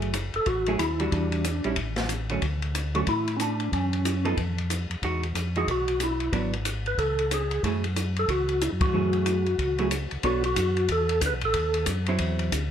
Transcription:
Already playing: tonewheel organ F#1, hollow-body jazz guitar F#3 A3 E4 G#4
0.02 ride
0.14 hi-hat pedal, ride
0.34 tonewheel organ F#1 A4, ride
0.46 tonewheel organ A1 F#4, kick, ride
0.66 hollow-body jazz guitar F#3 A3 E4 G#4, ride
0.79 tonewheel organ D#2 E4, hi-hat pedal, ride
1.00 hollow-body jazz guitar E3 G3 D4 F#4, ride
1.11 tonewheel organ E2 D4, kick, ride
1.32 ride
1.44 hi-hat pedal, ride
1.64 tonewheel organ A#1, hollow-body jazz guitar G3 C#4 E4, ride
1.76 tonewheel organ A1, kick, ride
1.96 snare, ride
2.09 hi-hat pedal, ride
2.29 hollow-body jazz guitar D3 F#3 A3 C#4, ride
2.42 tonewheel organ D2, kick, ride
2.62 ride
2.75 hi-hat pedal, ride
2.95 hollow-body jazz guitar D3 F#3 A3 C#4, tonewheel organ F#4, ride
3.07 tonewheel organ A2 E4, kick, ride
3.28 ride
3.37 tonewheel organ C#4, hi-hat pedal, ride
3.42 tonewheel organ D4
3.60 ride
3.72 tonewheel organ F#2 C#4, kick, ride
3.93 ride
4.05 hi-hat pedal, ride
4.25 hollow-body jazz guitar F3 B3 D#4 A4, ride
4.37 tonewheel organ F2, kick, ride
4.58 ride
4.70 hi-hat pedal, ride
4.90 tonewheel organ F2, ride
5.02 tonewheel organ E2, hollow-body jazz guitar E3 G#3 D#4 F#4, kick, ride
5.23 ride
5.35 tonewheel organ F2, hi-hat pedal, ride
5.56 hollow-body jazz guitar E3 G#3 D#4 F#4, tonewheel organ G#4, ride
5.67 tonewheel organ B1 F#4, kick, ride
5.88 ride
6.00 tonewheel organ E4, hi-hat pedal, ride
6.20 ride
6.32 tonewheel organ G#1, hollow-body jazz guitar F#3 B3 D4, kick, ride
6.53 ride
6.65 hi-hat pedal, ride
6.86 tonewheel organ B4, ride
6.97 tonewheel organ C#2 A4, kick, ride
7.19 ride
7.31 tonewheel organ G#4, hi-hat pedal, ride
7.51 ride
7.63 tonewheel organ F#2, hollow-body jazz guitar F#3 A3 E4 G#4, kick, ride
7.84 ride
7.96 hi-hat pedal, ride
8.16 tonewheel organ A4, ride
8.28 tonewheel organ C#2 F#4, kick, ride
8.49 ride
8.61 tonewheel organ E4, hi-hat pedal, ride
8.72 tonewheel organ F#2
8.81 tonewheel organ G2 F#4, kick, ride
8.93 tonewheel organ F#2, hollow-body jazz guitar F#3 A3 E4 G#4
9.13 ride
9.26 hi-hat pedal, ride
9.46 ride
9.59 tonewheel organ C#2, kick, ride
9.78 hollow-body jazz guitar F#3 A3 E4 G#4, ride
9.91 hi-hat pedal, ride
10.11 tonewheel organ C#2, ride
10.23 tonewheel organ B1 F#4, hollow-body jazz guitar B3 D4 A4 C#5, kick, ride
10.44 tonewheel organ F#4, ride
10.56 tonewheel organ F#2, kick, hi-hat pedal, ride
10.77 ride
10.89 tonewheel organ E2 A4, kick, ride
11.09 ride
11.21 tonewheel organ D2, kick, hi-hat pedal, ride
11.26 tonewheel organ B4
11.33 tonewheel organ B1
11.41 tonewheel organ A1 A4, ride
11.54 tonewheel organ D#2, kick, ride
11.74 ride
11.86 tonewheel organ F#2, kick, hi-hat pedal, ride
12.06 hollow-body jazz guitar F#3 C4 E4, ride
12.19 tonewheel organ E2, kick, ride
12.39 ride
12.52 tonewheel organ D2, kick, hi-hat pedal, ride

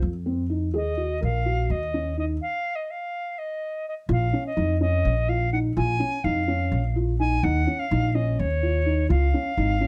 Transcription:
0.02 upright bass F2
0.26 felt piano C4
0.50 felt piano D#4
0.74 upright bass D#2, felt piano G#4, flute D#5
0.97 felt piano F#4
1.21 upright bass A#1, felt piano A#4, flute F5
1.46 felt piano F#4
1.70 upright bass D#2, flute D#5
1.94 felt piano C#4
2.17 felt piano D#4, flute D#5
2.41 flute F5
2.75 flute D#5
2.90 flute F5
3.38 flute D#5
3.88 flute D#5
4.09 upright bass A#1, felt piano F4, flute F5
4.33 felt piano C#4
4.46 flute D#5
4.56 upright bass F2, felt piano D#4
4.81 felt piano C#4, flute D#5
5.05 upright bass A#1
5.28 felt piano F4, flute F5
5.52 felt piano D#4, flute F#5
5.76 upright bass A#1, felt piano F4, flute G#5
6.00 felt piano C#4
6.24 upright bass F2, felt piano D#4, flute F5
6.48 felt piano C#4
6.72 upright bass A#1
6.96 felt piano F4
7.19 felt piano D#4, flute G#5
7.43 upright bass D#2, felt piano D#4, flute F#5
7.67 felt piano C#4
7.79 flute F5
7.91 upright bass A#1, felt piano D#4
8.14 felt piano C#4, flute D#5
8.39 upright bass D#2, flute C#5
8.63 felt piano F4
8.86 felt piano D#4
9.09 upright bass C#2, felt piano F4, flute F5
9.34 felt piano C#4
9.57 upright bass G#1, felt piano D#4
9.81 felt piano C#4

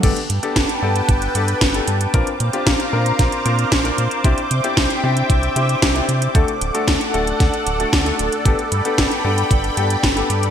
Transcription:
0.03 analog synth bass G1, grand piano B3 D4 G4 A4, analog synth pad B4 G5 A5 D6, kick, closed hi-hat, crash
0.17 closed hi-hat
0.30 analog synth bass G2, closed hi-hat
0.43 grand piano B3 D4 G4 A4, closed hi-hat
0.56 analog synth bass G1, kick, snare, closed hi-hat
0.69 closed hi-hat
0.82 analog synth bass G2, grand piano B3 D4 G4 A4
0.96 closed hi-hat
1.09 analog synth bass G1, kick, closed hi-hat
1.22 closed hi-hat
1.35 analog synth bass G2, grand piano B3 D4 G4 A4, closed hi-hat
1.48 closed hi-hat
1.61 analog synth bass G1, kick, snare, closed hi-hat
1.74 grand piano B3 D4 G4 A4, closed hi-hat
1.88 analog synth bass G2, closed hi-hat
2.01 closed hi-hat
2.14 analog synth bass A#1, grand piano C4 D4 F4 A#4, analog synth pad C5 F5 A#5, kick, closed hi-hat
2.27 closed hi-hat
2.40 analog synth bass A#2, closed hi-hat
2.53 grand piano C4 D4 F4 G4, closed hi-hat
2.67 analog synth bass A#1, kick, snare, closed hi-hat
2.80 closed hi-hat
2.93 analog synth bass A#2, grand piano C4 D4 F4 A#4
3.06 closed hi-hat
3.19 analog synth bass A#1, kick, snare, closed hi-hat
3.32 closed hi-hat
3.46 analog synth bass A#2, grand piano C4 D4 F4 A#4, closed hi-hat
3.59 closed hi-hat
3.72 analog synth bass A#1, kick, snare, closed hi-hat
3.85 grand piano C4 D4 F4 A#4, closed hi-hat
3.98 analog synth bass A#2, closed hi-hat
4.11 closed hi-hat
4.24 analog synth bass C2, grand piano C4 D4 E4 G4, analog synth pad E5 G5, kick, closed hi-hat
4.38 closed hi-hat
4.51 analog synth bass C3, closed hi-hat
4.64 grand piano C4 D4 E4 G4, closed hi-hat
4.77 analog synth bass C2, kick, snare, closed hi-hat
4.90 closed hi-hat
5.03 analog synth bass C3, grand piano C4 D4 E4 G4
5.17 closed hi-hat
5.30 analog synth bass C2, kick, closed hi-hat
5.43 closed hi-hat
5.56 analog synth bass C3, grand piano C4 D4 E4 G4, closed hi-hat
5.69 closed hi-hat
5.82 analog synth bass C2, kick, snare, closed hi-hat
5.95 grand piano C4 D4 E4 G4, closed hi-hat
6.09 analog synth bass C3, closed hi-hat
6.22 closed hi-hat
6.35 analog synth bass D2, grand piano A3 D4 F#4 A4, analog synth pad A4 D5 F#5, kick, closed hi-hat
6.48 closed hi-hat
6.61 analog synth bass D1, closed hi-hat
6.74 grand piano A3 D4 F#4 A4, closed hi-hat
6.88 analog synth bass D2, kick, snare, closed hi-hat
7.01 closed hi-hat
7.14 analog synth bass D1, grand piano A3 D4 F#4 A4, closed hi-hat
7.27 closed hi-hat
7.40 analog synth bass D2, kick, snare, closed hi-hat
7.54 closed hi-hat
7.66 analog synth bass D1, closed hi-hat
7.80 grand piano A3 D4 F#4 A4, closed hi-hat
7.93 analog synth bass D2, kick, snare, closed hi-hat
8.06 grand piano A3 D4 F#4 A4, closed hi-hat
8.19 analog synth bass D1, closed hi-hat
8.32 closed hi-hat
8.45 analog synth bass G1, grand piano B3 D4 G4 A4, analog synth pad G5 B5, kick, closed hi-hat
8.59 closed hi-hat
8.72 analog synth bass G2, closed hi-hat
8.85 grand piano B3 D4 G4 A4, closed hi-hat
8.98 analog synth bass G1, kick, snare, closed hi-hat
9.11 closed hi-hat
9.25 analog synth bass G2, grand piano B3 D4 G4 A4
9.38 closed hi-hat
9.51 analog synth bass G1, kick, closed hi-hat
9.64 closed hi-hat
9.77 analog synth bass G2, grand piano B3 D4 G4 A4, closed hi-hat
9.90 closed hi-hat
10.03 analog synth bass G1, kick, snare, closed hi-hat
10.17 grand piano B3 D4 G4 A4, closed hi-hat
10.30 analog synth bass G2, closed hi-hat
10.43 closed hi-hat

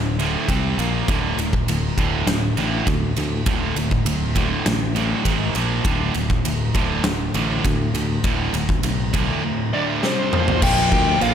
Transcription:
Already playing: picked electric bass D1, distorted electric guitar D2 A2
0.19 distorted electric guitar D2 A2 D3, ride
0.48 picked electric bass C2, distorted electric guitar C3 G3 C4, kick, ride
0.77 picked electric bass A#1, distorted electric guitar A#2 F3 A#3, ride
1.08 picked electric bass D1, distorted electric guitar D2 A2 D3, kick, ride
1.37 picked electric bass D1, distorted electric guitar D2 A2, ride
1.53 kick
1.67 picked electric bass D1, distorted electric guitar D2 A2, ride
1.98 picked electric bass D1, distorted electric guitar D2 A2 D3, kick, ride
2.27 picked electric bass D1, distorted electric guitar D2 A2, snare, ride
2.57 picked electric bass A1, distorted electric guitar D2 A2 D3, ride
2.87 picked electric bass D2, distorted electric guitar D2 A2, kick, ride
3.16 picked electric bass D2, distorted electric guitar D2 A2, ride
3.46 picked electric bass D1, distorted electric guitar D2 A2 D3, kick, ride
3.76 picked electric bass D1, distorted electric guitar D2 A2, ride
3.91 kick
4.05 picked electric bass D1, distorted electric guitar D2 A2, ride
4.35 distorted electric guitar D2 A2 D3, kick, ride
4.66 picked electric bass A1, distorted electric guitar D2 A2, snare, ride
4.96 distorted electric guitar D2 A2 D3, ride
5.25 picked electric bass G#1, distorted electric guitar G#2 D#3 G#3, kick, ride
5.55 picked electric bass A#1, distorted electric guitar A#2 F3 A#3, ride
5.85 picked electric bass D1, distorted electric guitar D2 A2 D3, kick, ride
6.14 picked electric bass D1, distorted electric guitar D2 A2, ride
6.30 kick
6.45 picked electric bass D1, distorted electric guitar D2 A2, ride
6.75 picked electric bass D1, distorted electric guitar D2 A2 D3, kick, ride
7.04 picked electric bass D1, distorted electric guitar D2 A2, snare, ride
7.34 picked electric bass A1, distorted electric guitar D2 A2 D3, ride
7.64 distorted electric guitar D2 A2, picked electric bass D2, kick, ride
7.94 picked electric bass D2, distorted electric guitar D2 A2, ride
8.24 picked electric bass D1, distorted electric guitar D2 A2 D3, kick, ride
8.53 picked electric bass D1, distorted electric guitar D2 A2, ride
8.69 kick
8.83 picked electric bass B1, distorted electric guitar D2 A2, ride
9.14 distorted electric guitar D2 A2 D3, kick, ride
9.44 distorted electric guitar D2 A2
9.73 distorted electric guitar D2 A2 D3, lead electric guitar D5
10.03 distorted electric guitar C3 G3 C4, lead electric guitar C5, snare
10.33 distorted electric guitar A#2 F3 A#3, mid tom
10.48 floor tom
10.62 picked electric bass A#1, distorted electric guitar A#2 F3, lead electric guitar G5, kick, crash
10.66 distorted electric guitar A#3
10.92 picked electric bass D2, kick
11.21 picked electric bass A#1, lead electric guitar F5, crash

